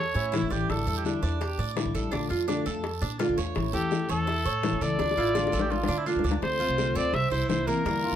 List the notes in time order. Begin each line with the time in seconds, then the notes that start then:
Already playing: E2 A4 C#5
0.15 A2 C#4 E4, high bongo
0.32 E3 A3 C#4 E4, high bongo, low bongo, short guiro
0.42 A1
0.50 A1 A3 C#4 E4 G4 D5, high bongo, short guiro
0.69 A1 D3 G3 D4 E4 A4, high bongo, long guiro
0.86 E2 G3 D4 E4 A4
0.97 G4
1.04 D3 G3 D4 E4, high bongo, short guiro
1.22 E2 G3 D4 E4 D5, short guiro
1.40 G4, muted steel-string acoustic guitar stroke, high bongo, long guiro
1.58 A2 D5
1.75 D3 G3 D4 E4, high bongo, low bongo, short guiro
1.85 A1
1.94 A1 G3 D4 E4 A4, short guiro
2.12 A#1 D3 A3 D4 F4, high bongo, long guiro
2.30 F2 A3 D4 F4, high bongo
2.48 D3 A3 D4 F4, high bongo, short guiro
2.65 F2 A3 D4 F4 A4, short guiro
2.84 muted steel-string acoustic guitar stroke, high bongo, long guiro
3.02 A#2 D4, high bongo
3.19 D3 A3 D4 F4, high bongo, low bongo, short guiro
3.29 A#1
3.38 E2 A3 D4 F4 C#5, high bongo, short guiro
3.55 A1 E3 A3 C#4 E4, high bongo, long guiro
3.73 E2 A3 C#4 E4 G4 A4
3.91 E3 A3 C#4 E4, high bongo, short guiro
4.09 E2 A3 C#4 A4 C#5, short guiro
4.26 E4, muted steel-string acoustic guitar stroke, high bongo, long guiro
4.45 A2 C#5
4.63 E3 A3 C#4 E4, high bongo, low bongo, short guiro
4.72 A1
4.81 C#2 A3 C#4 A4 D5, short guiro
4.99 D2 D3 A3 D4 F4, high bongo, long guiro
5.11 high bongo
5.17 A1 A3 D4 E4 F4
5.35 D3 A3 D4 F4, high bongo, short guiro
5.47 high bongo
5.52 A1 A3 F4 A4, short guiro
5.59 G4, low bongo
5.70 F4, muted steel-string acoustic guitar stroke, low bongo, long guiro
5.83 low bongo
5.88 D3 D4
5.98 E4
6.06 D3 A3 D4 F4, short guiro
6.15 D2, low bongo
6.24 D2 A3 D4 F4 D5, short guiro
6.31 low bongo
6.41 D2 D3 A3 C4 F4 C5, high bongo, long guiro
6.59 A3 C4 F4
6.68 C2
6.77 D3 A3 C4 F4, high bongo, short guiro
6.95 D2 A3 C4 F4 D5, high bongo, short guiro
7.13 C2 E5, muted steel-string acoustic guitar stroke, high bongo, long guiro
7.31 C2 E4 C5, high bongo
7.48 C2 C3 E3 A#3 C4 E4 C5, high bongo, low bongo, short guiro
7.67 A#3 C4 E4 A#4, high bongo, short guiro
7.85 E2 D3 G3 A#3 D4 E4, high bongo, long guiro
8.03 G3 D4 E4 F4
8.12 D2